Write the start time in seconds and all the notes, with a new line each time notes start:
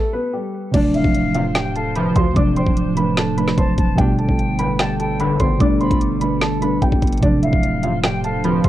Already playing: A3 A4
0.13 B3 B4
0.33 G3 G4
0.71 D1 C3 F3 A3 D4 C5 D5, kick, closed hi-hat, crash
0.77 D4
0.94 E4 E5 F5, closed hi-hat
1.02 D1 C3 F3 A3, kick
1.07 D4
1.15 closed hi-hat
1.35 A1 F2 C3 F4 F5, closed hi-hat
1.55 G4 G5, snare, closed hi-hat
1.75 A4 F5 A5, closed hi-hat
1.95 D2 C3 F3 B4 B5, closed hi-hat
2.16 D2 C5 C6, kick, closed hi-hat
2.34 D1 C3 F3 A3 D5 D6, kick, closed hi-hat
2.39 D4
2.56 C5 G5 C6, closed hi-hat
2.64 D1 C3 F3 A3, kick
2.69 D4
2.77 closed hi-hat
2.95 C3 F3 A3 B4 B5, closed hi-hat
3.00 D4
3.17 A4 A5, snare, closed hi-hat
3.35 C3 F3 A3 B4 B5, closed hi-hat
3.40 D4
3.48 snare
3.58 D1 C5 A5 C6, kick, closed hi-hat
3.78 D1 A5, kick, closed hi-hat
3.96 G1 B2 G3 A3 G4 A4 G5, kick, closed hi-hat
4.01 D4
4.18 A4 G5 A5, closed hi-hat
4.26 G1 B2 G3 A3, kick
4.31 D4
4.39 closed hi-hat
4.59 B1 A2 D3 B4 B5, closed hi-hat
4.79 G4 G5 A5, snare, closed hi-hat
5.00 A4 G5 A5, closed hi-hat
5.20 B1 A2 D3 B4 B5, closed hi-hat
5.40 G1 C5 C6, kick, closed hi-hat
5.58 G1 B2 G3 A3 D5 D6, kick, closed hi-hat
5.63 D4
5.81 C5 B5 C6, closed hi-hat
5.88 G1 B2 G3 A3, kick, closed hi-hat
5.94 D4
6.01 closed hi-hat
6.19 B2 G3 A3 B4 B5, closed hi-hat
6.24 D4
6.41 A4 A5, snare, closed hi-hat
6.59 B2 G3 A3 B4 B5, closed hi-hat
6.64 D4
6.82 G1 G4 G5, kick, closed hi-hat
6.92 G1, kick
7.02 G1, kick, closed hi-hat, open hi-hat
7.07 closed hi-hat
7.12 closed hi-hat
7.18 C3, closed hi-hat
7.22 D1 F3 A3 D4 C5 D5, kick, closed hi-hat
7.43 E4 E5 F5, closed hi-hat
7.50 D1 C3 F3 A3, kick
7.55 D4
7.63 closed hi-hat
7.83 A1 F2 C3 F4 F5, closed hi-hat
8.04 G4 G5, snare, closed hi-hat
8.24 A4 F5 A5, closed hi-hat
8.44 D2 C3 F3 B4 B5, closed hi-hat
8.64 D2 C5 C6, kick, closed hi-hat